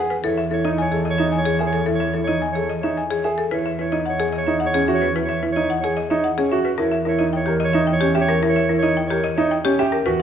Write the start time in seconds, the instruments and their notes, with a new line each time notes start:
Already playing: grand piano G#4, marimba F#5
0.10 marimba B4
0.24 double bass E2, grand piano E4, marimba A4, clarinet C#5
0.38 marimba E5
0.51 grand piano E4, marimba A4, clarinet C#5
0.65 grand piano D#4, marimba D#5
0.78 clarinet C#5, marimba G#5
0.92 marimba G#4, grand piano A4
1.05 marimba D#5
1.10 clarinet C#5
1.18 grand piano D#4, marimba E5
1.32 marimba G#5
1.38 clarinet C#5
1.45 marimba G#4
1.59 grand piano G#4, marimba E5
1.66 clarinet C#5
1.73 marimba A4
1.86 grand piano E4, marimba A4
1.95 clarinet C#5
2.00 marimba E5
2.14 grand piano E4, marimba A4
2.24 clarinet C#5, marimba D#5
2.29 grand piano D#4
2.42 marimba G#5
2.52 marimba G#4, grand piano A4, clarinet C#5
2.70 marimba D#5
2.80 grand piano D#4, clarinet C#5, marimba E5
2.97 marimba G#5
3.09 marimba G#4, clarinet C#5
3.24 grand piano G#4, marimba E5
3.38 marimba A4
3.51 double bass E2, grand piano E4, marimba B4, clarinet C#5
3.66 marimba E5
3.79 grand piano E4, marimba B4, clarinet C#5
3.92 grand piano D#4, marimba D#5
4.06 clarinet C#5, marimba F#5
4.20 marimba G#4, grand piano G#4
4.32 marimba D#5
4.38 clarinet C#5
4.47 grand piano D#4, marimba E5
4.60 marimba F#5
4.66 clarinet C#5
4.74 grand piano C#4, marimba G#4
4.88 grand piano F#4, marimba E5
4.95 clarinet C#5
5.02 marimba B4
5.16 grand piano E4, marimba B4
5.23 clarinet C#5
5.29 marimba E5
5.43 grand piano E4, marimba B4
5.52 clarinet C#5
5.56 grand piano D#4, marimba D#5
5.70 marimba F#5
5.80 grand piano G#4, marimba G#4, clarinet C#5
5.97 marimba D#5
6.09 grand piano D#4, clarinet C#5, marimba E5
6.24 marimba F#5
6.37 grand piano C#4, marimba G#4, clarinet C#5
6.52 grand piano F#4, marimba E5
6.65 marimba B4
6.78 double bass E2, grand piano E4, marimba A#4, clarinet C#5
6.92 marimba E5
7.05 grand piano E4, marimba A#4, clarinet C#5
7.19 grand piano D#4, marimba D#5
7.33 clarinet C#5, marimba G5
7.46 marimba G4, grand piano A#4
7.60 marimba D#5
7.64 clarinet C#5
7.73 grand piano D#4, marimba E5
7.87 marimba G5
7.93 clarinet C#5
8.01 grand piano C#4, marimba G4
8.15 grand piano G4, marimba E5
8.21 clarinet C#5
8.29 marimba A#4
8.42 grand piano E4, marimba A#4
8.50 clarinet C#5
8.56 marimba E5
8.69 grand piano E4, marimba A#4
8.78 clarinet C#5
8.83 grand piano D#4, marimba D#5
8.97 marimba G5
9.07 marimba G4, grand piano A#4, clarinet C#5
9.24 marimba D#5
9.35 grand piano D#4, clarinet C#5, marimba E5
9.51 marimba G5
9.64 grand piano C#4, marimba G4, clarinet C#5
9.79 grand piano G4, marimba E5
9.92 marimba A#4
10.06 double bass E2, grand piano F#4, marimba B4, clarinet B4